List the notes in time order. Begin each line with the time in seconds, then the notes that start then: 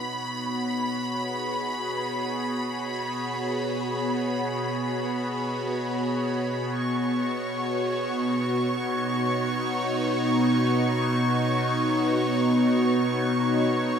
Already playing: B2 B3 D#4 F#4 C#5 B5
0.01 G#4
6.78 C#6
7.71 D#4